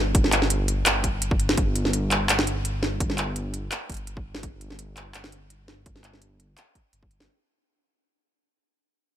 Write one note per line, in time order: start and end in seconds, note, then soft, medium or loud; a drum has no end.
0.00 0.13 G1 medium
0.15 0.85 G1 medium
0.15 kick loud
0.15 closed hi-hat medium
0.24 snare soft
0.32 clap medium
0.32 closed hi-hat medium
0.42 snare soft
0.50 closed hi-hat medium
0.68 closed hi-hat medium
0.86 1.38 G1 medium
0.86 clap loud
0.86 closed hi-hat medium
1.04 kick medium
1.04 closed hi-hat medium
1.22 closed hi-hat medium
1.31 kick loud
1.39 1.56 G1 medium
1.39 closed hi-hat soft
1.49 snare medium
1.57 2.28 G1 medium
1.57 kick loud
1.57 closed hi-hat medium
1.76 closed hi-hat medium
1.85 snare soft
1.93 closed hi-hat medium
2.11 clap medium
2.11 closed hi-hat medium
2.29 2.99 G1 medium
2.29 clap loud
2.29 closed hi-hat medium
2.39 snare medium
2.47 closed hi-hat medium
2.65 closed hi-hat medium
2.83 snare soft
3.00 3.70 G1 medium
3.00 kick loud
3.00 closed hi-hat medium
3.10 snare soft
3.18 clap medium
3.18 closed hi-hat medium
3.36 closed hi-hat medium
3.54 closed hi-hat medium
3.72 clap loud
3.72 closed hi-hat medium
3.90 4.42 G1 medium
3.90 kick medium
3.90 closed hi-hat medium
3.92 closed hi-hat soft
3.94 closed hi-hat soft
3.97 closed hi-hat soft
4.07 closed hi-hat medium
4.17 kick loud
4.35 snare medium
4.43 5.13 G1 loud
4.43 kick loud
4.43 closed hi-hat medium
4.61 closed hi-hat medium
4.70 snare soft
4.79 closed hi-hat medium
4.97 clap medium
4.97 closed hi-hat medium
5.14 5.85 G1 medium
5.14 clap loud
5.14 closed hi-hat medium
5.24 snare medium
5.32 closed hi-hat medium
5.50 closed hi-hat medium
5.68 snare medium
5.86 6.56 G1 medium
5.86 kick loud
5.86 closed hi-hat medium
5.96 snare soft
6.04 clap medium
6.04 closed hi-hat medium
6.13 snare soft
6.22 closed hi-hat medium
6.40 closed hi-hat medium
6.58 clap loud
6.58 closed hi-hat medium
6.75 kick medium
6.75 closed hi-hat medium
6.93 7.27 G1 loud
6.93 closed hi-hat medium
7.03 kick loud
7.11 closed hi-hat soft
7.20 snare medium